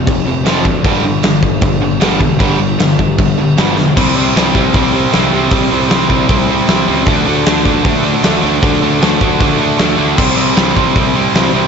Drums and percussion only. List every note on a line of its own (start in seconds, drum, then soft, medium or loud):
0.07 kick loud
0.07 crash medium
0.46 snare loud
0.46 crash medium
0.65 kick medium
0.84 kick loud
0.84 crash medium
1.23 snare loud
1.23 crash medium
1.43 kick medium
1.62 kick loud
1.62 crash medium
2.01 snare loud
2.01 crash medium
2.21 kick medium
2.40 kick loud
2.40 crash medium
2.80 snare loud
2.80 crash medium
2.99 kick medium
3.18 kick loud
3.18 crash medium
3.58 snare loud
3.58 crash medium
3.78 snare medium
3.97 kick loud
3.97 crash loud
4.36 snare loud
4.36 open hi-hat medium
4.55 kick medium
4.74 kick loud
4.74 open hi-hat medium
5.13 snare loud
5.13 open hi-hat medium
5.51 kick loud
5.51 open hi-hat medium
5.90 snare loud
5.90 open hi-hat medium
6.10 kick medium
6.29 kick loud
6.29 open hi-hat medium
6.68 snare loud
6.68 open hi-hat medium
7.07 kick loud
7.07 open hi-hat medium
7.46 snare loud
7.46 open hi-hat medium
7.65 kick medium
7.85 kick loud
7.85 open hi-hat medium
8.23 snare loud
8.23 open hi-hat medium
8.62 kick loud
8.62 open hi-hat medium
9.02 snare loud
9.02 open hi-hat medium
9.21 kick medium
9.41 kick loud
9.41 open hi-hat medium
9.79 snare loud
9.79 open hi-hat medium
10.18 kick loud
10.18 crash loud
10.56 snare loud
10.56 open hi-hat medium
10.77 kick medium
10.96 kick loud
10.96 open hi-hat medium
11.35 snare loud
11.35 open hi-hat medium